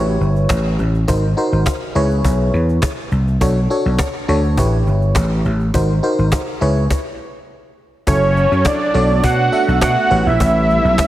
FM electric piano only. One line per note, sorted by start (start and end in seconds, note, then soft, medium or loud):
0.00 0.85 E4 medium
0.00 0.85 G4 medium
0.00 0.85 B4 medium
0.00 0.89 C#5 medium
1.08 1.26 D#4 medium
1.08 1.26 F#4 medium
1.08 1.27 A#4 medium
1.08 1.27 C5 medium
1.37 1.73 D#4 medium
1.37 1.73 F#4 medium
1.37 1.73 A#4 medium
1.37 1.73 C5 medium
1.95 2.89 E4 medium
1.95 2.89 G#4 medium
1.95 2.89 B4 medium
1.95 2.89 C#5 loud
3.41 3.59 D4 medium
3.41 3.59 F#4 medium
3.41 3.60 A4 medium
3.41 3.60 C#5 medium
3.70 4.06 D4 medium
3.70 4.06 F#4 medium
3.70 4.06 A4 medium
3.70 4.06 C#5 medium
4.28 4.57 D4 medium
4.28 4.58 F#4 medium
4.28 4.58 A4 medium
4.28 4.57 C#5 medium
4.58 5.51 E4 medium
4.58 5.51 G4 medium
4.58 5.51 B4 medium
4.58 5.52 C#5 medium
5.74 5.92 D#4 medium
5.74 5.93 F#4 medium
5.74 5.93 A#4 medium
5.74 5.93 C5 medium
6.03 6.39 D#4 medium
6.03 6.39 F#4 medium
6.03 6.39 A#4 medium
6.03 6.39 C5 loud
6.61 6.85 E4 medium
6.61 6.85 G#4 medium
6.61 6.85 B4 medium
6.61 6.85 C#5 loud
8.07 8.79 E4 medium
8.07 8.79 F#4 medium
8.07 8.79 A4 medium
8.07 8.79 C#5 medium
8.94 9.41 D4 medium
8.94 9.42 F#4 medium
8.94 9.42 A4 medium
8.94 9.42 C#5 medium
9.52 10.06 D4 medium
9.52 10.06 F#4 medium
9.52 10.06 A4 medium
9.52 10.06 E5 medium
10.10 11.04 E4 medium
10.10 11.04 G4 medium
10.10 11.04 B4 medium
10.10 11.04 C#5 medium